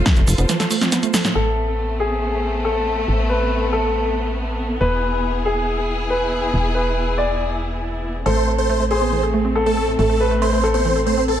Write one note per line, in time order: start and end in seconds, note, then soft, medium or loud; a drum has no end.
0.00 1.32 F4 medium
0.00 1.31 A4 medium
0.00 1.31 C5 medium
0.06 0.13 A3 loud
0.06 kick loud
0.06 snare loud
0.06 closed hi-hat medium
0.06 shaker soft
0.16 0.24 F1 medium
0.16 0.24 A3 medium
0.16 closed hi-hat medium
0.16 shaker soft
0.27 0.34 F1 loud
0.27 0.32 A4 medium
0.27 open hi-hat medium
0.27 shaker medium
0.38 0.45 F1 medium
0.38 0.45 B3 medium
0.38 closed hi-hat medium
0.38 shaker soft
0.49 0.56 E3 medium
0.49 snare medium
0.49 closed hi-hat medium
0.49 shaker soft
0.60 0.64 A4 medium
0.60 snare medium
0.60 closed hi-hat medium
0.60 shaker soft
0.70 0.75 A3 medium
0.70 open hi-hat loud
0.70 shaker medium
0.81 0.88 C4 medium
0.81 snare medium
0.81 closed hi-hat medium
0.81 shaker soft
0.92 0.96 B3 medium
0.92 snare medium
0.92 closed hi-hat medium
0.92 shaker medium
1.03 1.10 A3 medium
1.03 closed hi-hat medium
1.03 shaker soft
1.14 1.18 A4 medium
1.14 snare loud
1.14 open hi-hat medium
1.14 shaker medium
1.24 1.29 A2 medium
1.24 snare medium
1.24 closed hi-hat medium
1.24 shaker soft
1.35 3.06 A1 medium
1.35 4.77 A3 medium
1.35 8.22 B3 medium
1.35 4.77 C4 medium
1.35 1.91 A4 medium
2.00 2.56 G#4 medium
2.65 3.21 A4 medium
3.08 4.78 A1 medium
3.29 3.71 B4 medium
3.73 4.72 A4 medium
4.80 6.51 E1 medium
4.80 8.22 E4 medium
4.80 8.22 G#4 medium
4.80 5.37 B4 medium
5.46 6.02 G#4 medium
6.10 6.66 B4 medium
6.53 8.24 E1 medium
6.75 7.16 B4 medium
7.18 8.17 D5 medium
8.26 9.96 A1 medium
8.26 8.33 A3 medium
8.26 11.40 A3 medium
8.26 11.40 C4 medium
8.26 8.82 A4 medium
8.26 8.52 C5 loud
8.37 8.46 A3 medium
8.48 8.52 A3 medium
8.58 8.65 A3 medium
8.58 8.84 C5 loud
8.69 8.76 A3 loud
8.80 8.87 A3 medium
8.91 9.47 G#4 medium
8.91 8.95 A4 medium
8.91 9.25 C5 medium
9.02 9.09 B3 medium
9.12 9.19 E3 medium
9.23 9.27 A4 medium
9.34 9.38 A3 medium
9.45 9.52 C4 medium
9.55 9.60 B3 medium
9.55 10.12 A4 medium
9.66 9.73 A3 medium
9.66 9.92 A4 medium
9.77 9.81 A4 medium
9.88 9.92 A2 medium
9.99 11.40 A1 medium
9.99 10.06 A3 medium
9.99 10.33 A4 medium
10.10 10.19 A3 medium
10.20 10.25 A3 medium
10.20 10.61 B4 medium
10.31 10.38 A3 medium
10.42 10.49 A3 loud
10.42 10.68 C5 medium
10.53 10.60 A3 medium
10.64 11.40 A4 medium
10.64 10.68 A4 medium
10.74 10.81 B3 medium
10.74 11.00 C5 medium
10.85 10.92 E3 medium
10.96 11.00 A4 medium
11.06 11.11 A3 medium
11.06 11.24 C5 medium
11.17 11.24 C4 medium
11.28 11.32 B3 medium
11.28 11.40 A4 medium